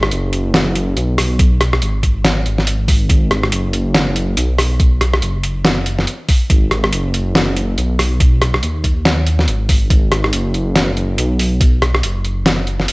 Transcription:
Already playing: G#1
0.03 cross-stick
0.11 F#1, closed hi-hat
0.33 closed hi-hat
0.54 snare, closed hi-hat
0.75 closed hi-hat
0.97 B1, closed hi-hat
1.18 cross-stick, open hi-hat
1.39 kick, closed hi-hat
1.61 cross-stick, closed hi-hat
1.73 cross-stick
1.82 G#1, closed hi-hat
2.03 kick, closed hi-hat
2.25 snare, closed hi-hat
2.46 G#1, closed hi-hat
2.58 snare
2.67 closed hi-hat
2.88 kick, open hi-hat
3.09 G#1, kick, closed hi-hat
3.31 cross-stick, closed hi-hat
3.43 cross-stick
3.52 F#1, closed hi-hat
3.73 closed hi-hat
3.95 snare, closed hi-hat
4.16 closed hi-hat
4.37 B1, closed hi-hat
4.58 cross-stick, open hi-hat
4.80 kick, closed hi-hat
5.01 cross-stick, closed hi-hat
5.14 cross-stick
5.22 F#1, closed hi-hat
5.44 closed hi-hat
5.65 snare, closed hi-hat
5.86 closed hi-hat
5.99 snare
6.07 closed hi-hat
6.29 kick, open hi-hat
6.50 G#1, kick, closed hi-hat
6.71 cross-stick, closed hi-hat
6.84 cross-stick
6.92 F#1, closed hi-hat
7.14 closed hi-hat
7.35 snare, closed hi-hat
7.57 closed hi-hat
7.78 B1, closed hi-hat
7.99 cross-stick, open hi-hat
8.20 kick, closed hi-hat
8.42 cross-stick, closed hi-hat
8.54 cross-stick
8.63 D#2, closed hi-hat
8.84 kick, closed hi-hat
9.05 snare, closed hi-hat
9.27 closed hi-hat
9.39 snare
9.48 G#1, closed hi-hat
9.69 kick, open hi-hat
9.90 G#1, kick, closed hi-hat
10.12 cross-stick, closed hi-hat
10.24 cross-stick
10.33 F#1, closed hi-hat
10.54 closed hi-hat
10.76 snare, closed hi-hat
10.97 closed hi-hat
11.18 B1, closed hi-hat
11.39 open hi-hat
11.61 kick, closed hi-hat
11.82 cross-stick, closed hi-hat
11.94 cross-stick
12.03 F#1, closed hi-hat
12.25 closed hi-hat
12.46 snare, closed hi-hat
12.67 closed hi-hat
12.80 snare
12.88 closed hi-hat

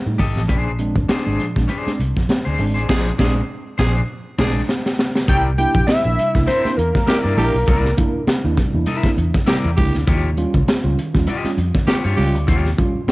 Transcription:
0.06 A2 G3 A3 D#4
0.18 G#1 G4 A4 D#5, kick, open hi-hat, high conga
0.36 A1 F3, snare, closed hi-hat
0.48 A#1 A#2 F3 D4 G#4 C5, kick, closed hi-hat, muted conga
0.79 G#3 C4 D4, closed hi-hat, muted conga
0.96 G#1 C4 D4, kick
1.08 D4 G#4 C5, muted fingered electric bass stroke, snare, closed hi-hat, high conga
1.25 G#1 G#3 C4 D4 G#4 C5
1.40 A#2 F3, closed hi-hat
1.56 A#1 G#3 C4 D4, kick, snare
1.68 D4 G#4 C5, closed hi-hat, muted conga
1.86 G#3 C4 D4, muted fingered electric bass stroke, snare, closed hi-hat
1.99 C2, closed hi-hat
2.16 A#2 F3, kick, snare
2.29 snare, closed hi-hat, high conga
2.45 D2 D4 G#4 C5
2.58 G#1 G#3 C4 D4, open hi-hat, high conga
2.74 A1 D4 G#4 C5, closed hi-hat
2.89 A#1 A#2 F3 D4 G#4 C5, kick, snare, crash
3.18 A#1 G#3 C4 D4 G#4 C5, kick, snare
3.78 A#1 A#2 F3 D4 G#4 C5, kick, snare
4.38 A#1 G#3 C4 D4 G#4 D5, kick, snare, crash
4.69 snare
4.86 snare
4.99 snare
5.16 snare
5.27 C2 C3 G3 E4 A#4 D5 G5, kick, closed hi-hat, muted conga
5.58 A#3 D4 E4 G5, closed hi-hat, muted conga
5.75 A#1 D4 E4, kick
5.87 E5, muted fingered electric bass stroke, snare, closed hi-hat, high conga
6.05 A#1 A#3 D4 E4
6.18 C3 G3, closed hi-hat
6.35 C2 A#3 D4 E4, kick, snare
6.46 E4 A#4 C5 E5, closed hi-hat, muted conga
6.65 A#3 D4 E4, muted fingered electric bass stroke, snare, closed hi-hat
6.77 E2 A#4, closed hi-hat
6.95 C3 G3, kick, snare
7.07 E4 G4 A#4 D5, snare, closed hi-hat, high conga
7.24 G2 E4 A#4 D5
7.37 A#1 A#3 D4 E4 G4 A#4, open hi-hat, high conga
7.54 B1
7.67 C2 C3 G3 E4 A#4 D5, kick, closed hi-hat, muted conga
7.85 snare
7.97 A#3 D4 E4, kick, closed hi-hat
8.14 D4 E4, muted fingered electric bass stroke
8.27 muted fingered electric bass stroke, snare, closed hi-hat, high conga
8.44 D#2 A#3 D4 E4
8.57 C3 G3, kick, snare, closed hi-hat
8.74 E2 A#3 D4 E4
8.86 C3 G3 E4 A#4 E5, closed hi-hat, muted conga
9.03 A#3 D4 E4, muted fingered electric bass stroke, kick, snare, closed hi-hat
9.18 E2 D4 E4, closed hi-hat
9.34 kick, snare
9.46 C3 G3 E4 G4 A#4 D5, snare, closed hi-hat, high conga
9.64 E2
9.77 C#2 A#3 D4 E4 G4, kick, open hi-hat, high conga
9.94 D2 D4 E4, snare, closed hi-hat
10.07 D#2 D#3 F4 G4 C#5, kick, closed hi-hat, muted conga
10.37 G3 C#4 F4, closed hi-hat, muted conga
10.54 C#2 C#4 F4, kick
10.68 snare, closed hi-hat, high conga
10.83 C#2 G3 C#4 F4
10.97 D#3, closed hi-hat
11.14 D#2 G3 C#4 F4, kick, snare
11.27 F4 G4 D#5, closed hi-hat, muted conga
11.44 G3 C#4 F4, muted fingered electric bass stroke, snare, closed hi-hat
11.57 F2, closed hi-hat
11.74 D#3, kick, snare
11.87 F4 G4 C#5, snare, closed hi-hat, high conga
12.04 G2 F4 G4 C#5
12.17 C#2 G3 C#4 F4 G4, open hi-hat, high conga
12.34 D2, closed hi-hat
12.47 D#2 D#3 F4 G4 C#5, kick, closed hi-hat, muted conga
12.66 snare
12.78 G3 C#4 F4, kick, closed hi-hat
12.94 C#4 F4, muted fingered electric bass stroke
13.07 muted fingered electric bass stroke, snare, high conga

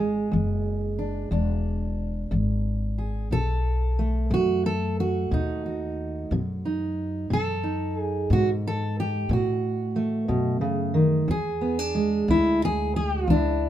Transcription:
Already playing: G#1 G#3 G#4
0.32 F#1 E2
0.99 D4
1.31 E1 E2 D4
2.31 G#1 E2
2.98 G#4
3.31 B1 B2 A4
3.99 A3
4.31 F#2 B2 F#4
4.66 A4
5.00 F#4
5.31 D#2 B2 D#4
5.66 F#4
6.31 F#2 B2
6.65 D#4
7.30 F#2 B2 A4
7.63 D#4
7.99 G#4
8.30 G#2 B2 F#4
8.67 A4
9.00 G4
9.29 A2 B2 F#4
9.96 A3
10.28 F#2 B2
10.61 C#3
10.94 D#3
11.28 E2 G#4
11.61 B3
11.79 D4
11.95 G#3
12.28 D2 E2 E4
12.65 G#4
12.96 G4
13.15 F#4
13.27 C#2 E2 D4 F4
13.40 E4

